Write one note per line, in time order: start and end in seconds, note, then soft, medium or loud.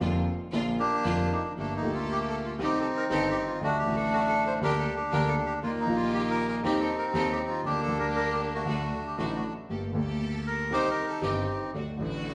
0.01 0.23 F1 medium
0.01 0.23 F2 loud
0.01 0.23 D3 medium
0.01 0.23 F3 medium
0.01 0.23 A#3 medium
0.01 0.23 D4 medium
0.01 0.23 F4 medium
0.52 0.75 A#1 medium
0.52 0.75 A#2 medium
0.52 0.75 D3 medium
0.52 0.75 F3 medium
0.52 0.74 A#3 medium
0.52 0.75 A#3 medium
0.52 0.74 D4 medium
0.52 0.75 F4 loud
0.52 0.75 F4 medium
0.79 1.53 A#3 medium
0.79 1.53 D4 medium
0.79 1.33 G4 loud
1.05 1.27 F1 medium
1.05 1.27 F2 medium
1.05 1.27 D3 medium
1.05 1.27 F3 medium
1.05 1.27 A#3 medium
1.05 1.27 D4 medium
1.05 1.27 F4 medium
1.32 1.43 D#4 medium
1.57 1.79 G1 medium
1.57 1.79 G2 medium
1.57 1.78 D3 soft
1.57 1.79 A3 soft
1.57 2.56 A3 medium
1.57 1.79 A#3 soft
1.57 2.56 A#3 medium
1.57 1.74 D4 medium
1.57 1.79 G4 soft
1.57 1.79 A4 medium
1.77 1.91 D#4 medium
1.81 2.56 D2 medium
1.81 2.56 A#2 medium
1.81 2.55 D3 medium
1.81 2.56 G4 medium
1.81 2.57 G4 medium
1.81 2.56 A4 medium
1.94 2.10 F4 medium
2.12 2.19 G4 loud
2.29 2.36 A4 medium
2.45 2.52 F4 medium
2.58 2.81 C2 medium
2.58 2.81 C3 medium
2.58 2.80 D#3 medium
2.58 2.81 G3 medium
2.58 2.81 C4 medium
2.58 2.81 D#4 medium
2.58 2.81 G4 medium
2.63 3.59 C4 medium
2.63 3.59 D#4 medium
2.63 2.79 G4 medium
2.81 2.87 A4 medium
2.97 3.04 A#4 medium
3.10 3.31 G1 medium
3.10 3.31 G2 medium
3.10 3.31 D#3 medium
3.10 3.31 G3 medium
3.10 3.32 C4 medium
3.10 3.32 D#4 medium
3.10 3.31 G4 medium
3.10 3.32 G4 medium
3.10 3.28 A4 loud
3.31 3.38 G4 loud
3.47 3.61 F4 medium
3.61 3.82 D2 medium
3.61 3.83 D3 medium
3.61 3.83 F#3 soft
3.61 3.82 A3 medium
3.61 3.83 A3 soft
3.61 4.59 A3 medium
3.61 3.83 D4 soft
3.61 4.59 D4 medium
3.61 3.83 F#4 medium
3.61 3.78 F#4 loud
3.79 3.96 G4 medium
3.84 4.58 A1 medium
3.84 4.58 A2 medium
3.84 4.57 D3 medium
3.84 4.58 F#3 medium
3.84 4.58 A3 medium
3.84 4.58 D4 medium
3.84 4.58 F#4 medium
3.84 4.59 F#4 medium
3.96 4.13 A4 medium
4.13 4.20 F#4 loud
4.29 4.44 A4 loud
4.47 4.54 C5 loud
4.61 4.83 D2 medium
4.61 4.83 D3 medium
4.61 4.83 G3 medium
4.61 4.83 A#3 medium
4.61 4.83 D4 medium
4.61 5.59 D4 medium
4.61 4.83 G4 medium
4.61 4.83 G4 loud
4.61 4.95 G4 medium
4.61 4.78 A#4 loud
4.78 4.94 A4 medium
4.97 5.12 G4 medium
5.12 5.34 D2 loud
5.12 5.33 D3 medium
5.12 5.34 D3 loud
5.12 5.34 G3 medium
5.12 5.33 A#3 medium
5.12 5.34 A#3 medium
5.12 5.33 D4 medium
5.12 5.34 G4 medium
5.12 5.30 A#4 loud
5.28 5.36 A4 loud
5.46 5.53 G4 medium
5.63 5.84 D#2 medium
5.63 5.83 D#3 medium
5.63 5.84 G3 soft
5.63 5.84 A#3 soft
5.63 6.61 A#3 medium
5.63 5.84 D#4 medium
5.63 5.84 F4 soft
5.63 5.71 F4 loud
5.63 5.84 F4 medium
5.63 5.84 G4 medium
5.80 5.97 D#4 loud
5.85 6.59 A#1 medium
5.85 6.60 A#2 medium
5.85 6.59 D#3 medium
5.85 6.59 G3 medium
5.85 6.60 A#3 medium
5.85 6.60 D#4 medium
5.85 6.60 F4 medium
5.85 6.61 F4 medium
5.85 6.60 G4 loud
5.96 6.12 F4 loud
6.14 6.22 G4 loud
6.30 6.47 A#4 loud
6.48 6.56 A#4 loud
6.63 6.85 D#2 medium
6.63 6.85 D#3 loud
6.63 6.85 D#3 medium
6.63 6.85 G3 medium
6.63 6.85 C4 medium
6.63 7.61 C4 medium
6.63 6.85 D#4 medium
6.63 7.62 D#4 medium
6.63 6.86 G4 loud
6.63 6.86 G4 medium
6.63 6.80 G4 medium
6.81 6.96 A4 medium
6.98 7.06 A#4 medium
7.13 7.35 D#2 loud
7.13 7.35 D#3 loud
7.13 7.36 D#3 medium
7.13 7.35 G3 medium
7.13 7.35 C4 medium
7.13 7.36 C4 medium
7.13 7.36 D#4 medium
7.13 7.35 G4 medium
7.13 7.36 G4 loud
7.13 7.32 A4 loud
7.32 7.39 G4 medium
7.49 7.65 F4 medium
7.63 7.86 D2 medium
7.63 7.84 D3 medium
7.63 7.87 D3 medium
7.63 7.86 G3 soft
7.63 7.86 A#3 soft
7.63 7.87 A#3 soft
7.63 8.63 A#3 medium
7.63 8.53 D4 medium
7.63 7.87 D4 soft
7.63 7.86 G4 medium
7.63 7.81 G4 medium
7.63 7.87 G4 medium
7.83 7.98 A4 loud
7.88 8.62 D2 medium
7.88 8.62 D3 medium
7.88 8.63 D3 medium
7.88 8.62 G3 medium
7.88 8.62 A#3 medium
7.88 8.63 A#3 medium
7.88 8.63 D4 medium
7.88 8.63 G4 medium
7.99 8.07 A#4 medium
8.16 8.31 A#4 loud
8.32 8.41 G4 medium
8.55 9.54 A3 medium
8.55 9.54 D4 medium
8.55 9.04 F#4 medium
8.65 8.88 D2 medium
8.65 8.88 D3 medium
8.65 8.88 F#3 medium
8.65 8.88 A3 medium
8.65 8.89 A3 medium
8.65 8.89 D4 medium
8.65 8.88 F#4 medium
8.65 8.89 F#4 medium
9.07 9.17 G4 medium
9.17 9.40 A1 medium
9.17 9.40 A2 medium
9.17 9.40 D3 medium
9.17 9.40 F#3 medium
9.17 9.39 A3 medium
9.17 9.40 A3 medium
9.17 9.40 D4 medium
9.17 9.26 F#4 medium
9.17 9.40 F#4 medium
9.26 9.35 D#4 medium
9.35 9.44 F#4 medium
9.69 9.91 G1 medium
9.69 9.91 G2 medium
9.69 9.91 D3 soft
9.69 9.91 A3 soft
9.69 9.91 A#3 soft
9.69 9.92 A#3 medium
9.69 9.91 G4 medium
9.69 9.91 G4 soft
9.69 9.92 A4 soft
9.92 10.68 D2 medium
9.92 10.68 D3 medium
9.92 10.68 A3 medium
9.92 10.68 A#3 medium
9.92 10.68 G4 medium
9.92 10.68 A4 medium
9.97 10.69 G4 medium
10.47 10.73 A#4 loud
10.70 10.93 C2 medium
10.70 10.93 C3 medium
10.70 10.93 D#3 medium
10.70 10.93 G3 medium
10.70 10.93 C4 medium
10.70 10.94 D#4 medium
10.70 11.22 D#4 medium
10.70 10.93 G4 medium
10.70 10.94 G4 medium
10.70 11.23 G4 medium
10.70 10.89 C5 loud
10.91 11.06 A#4 medium
11.09 11.25 A4 medium
11.21 11.44 G1 medium
11.21 11.44 G2 medium
11.21 11.44 D#3 medium
11.21 11.44 G3 medium
11.21 11.44 C4 medium
11.21 11.71 C4 medium
11.21 11.44 D#4 medium
11.21 11.71 D#4 medium
11.21 11.44 G4 medium
11.21 11.60 G4 medium
11.74 11.96 D2 medium
11.74 11.96 D3 medium
11.74 11.96 F#3 soft
11.74 11.96 A3 soft
11.74 11.96 A3 medium
11.74 11.96 D4 soft
11.74 11.96 F#4 medium
11.97 12.34 A1 medium
11.97 12.34 A2 medium
11.97 12.34 D3 medium
11.97 12.34 F#3 medium
11.97 12.34 A3 medium
11.97 12.34 D4 medium
11.97 12.34 F#4 loud
11.97 12.34 F#4 medium